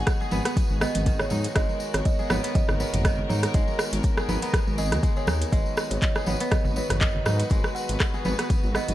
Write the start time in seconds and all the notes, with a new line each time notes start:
Already playing: D#3 G#3 B3 D#4 F#4 G#4 F#5
0.07 kick, cross-stick, closed hi-hat, tambourine
0.21 G#4, tambourine, muted conga
0.31 G#1 B3, tambourine, high conga
0.45 B3, cross-stick, closed hi-hat, tambourine, muted conga
0.56 kick, closed hi-hat, tambourine, high conga
0.69 G#1, tambourine
0.81 B3 D#5, cross-stick, tambourine, muted conga
0.95 G#1, closed hi-hat, tambourine, high conga
1.06 D#3, kick, closed hi-hat, tambourine, muted conga, low conga
1.19 C#5, cross-stick, tambourine
1.30 G#2 D#4, tambourine, muted conga, high conga
1.44 closed hi-hat, tambourine
1.56 G#1 G#3 A#4 D#5, kick, cross-stick, closed hi-hat, tambourine
1.69 tambourine, muted conga
1.80 tambourine
1.94 G#1 C#5, cross-stick, closed hi-hat, tambourine, muted conga
2.05 D#5, kick, closed hi-hat, tambourine
2.19 G#4, tambourine, muted conga
2.30 G#1 B3 C#5, cross-stick, tambourine, high conga
2.43 B3, closed hi-hat, tambourine, muted conga
2.55 D#5, kick, closed hi-hat, tambourine, high conga, low conga
2.69 G#1, cross-stick, tambourine, low conga
2.80 B3 C#5, tambourine, muted conga
2.93 G#1, closed hi-hat, mid tom, tambourine, high conga, low conga
3.05 D#3 D#5, kick, cross-stick, closed hi-hat, tambourine, muted conga
3.18 low conga
3.29 G#2 D#4 C#5, tambourine, muted conga, high conga
3.43 cross-stick, closed hi-hat, tambourine
3.54 G#1 G#3 D#5, kick, closed hi-hat, tambourine
3.68 tambourine, muted conga
3.79 cross-stick, tambourine
3.93 G#1, closed hi-hat, tambourine, muted conga
4.03 kick, closed hi-hat, tambourine
4.17 G#4, cross-stick, tambourine, muted conga
4.28 G#1 B3, tambourine, high conga
4.41 B3, closed hi-hat, tambourine, muted conga
4.53 kick, cross-stick, closed hi-hat, tambourine, high conga
4.67 G#1, tambourine
4.78 G#4 D#5, tambourine, muted conga
4.91 D#2, cross-stick, closed hi-hat, tambourine, high conga
5.03 G#3, kick, closed hi-hat, tambourine, muted conga, low conga
5.17 G#4 C#5, tambourine
5.27 D#2 D#4, cross-stick, tambourine, muted conga, high conga
5.41 closed hi-hat, tambourine
5.52 G#1 F#3 G#3 F#4 B4 D#5, kick, closed hi-hat, tambourine
5.66 tambourine, muted conga
5.77 cross-stick, tambourine
5.91 G#1 C#5, closed hi-hat, tambourine, muted conga
6.02 D#5, kick, clap, closed hi-hat, tambourine
6.15 G#4, cross-stick, tambourine, muted conga
6.26 G#1 B3 C#5, tambourine, high conga
6.40 B3, closed hi-hat, tambourine, muted conga
6.51 D#5, kick, cross-stick, closed hi-hat, tambourine, high conga, low conga
6.65 G#1, tambourine, low conga
6.76 B3 C#5, tambourine, muted conga
6.89 G#1, cross-stick, closed hi-hat, mid tom, tambourine, high conga, low conga
7.01 D#3 D#5, kick, clap, closed hi-hat, tambourine, muted conga
7.16 low conga
7.26 G#2 D#4 D#5, cross-stick, tambourine, muted conga, high conga
7.40 closed hi-hat, tambourine
7.50 G#1 G#3, kick, closed hi-hat, tambourine
7.64 cross-stick, tambourine, muted conga
7.75 F#5, tambourine
7.89 G#1, closed hi-hat, tambourine, muted conga
8.00 kick, cross-stick, clap, closed hi-hat, tambourine
8.14 G#4, tambourine, muted conga
8.25 G#1 B3, tambourine, high conga
8.39 B3, cross-stick, closed hi-hat, tambourine, muted conga
8.50 kick, closed hi-hat, tambourine, high conga
8.63 G#1, tambourine
8.74 B3 D#5, cross-stick, tambourine, muted conga
8.88 G#1, closed hi-hat, tambourine, high conga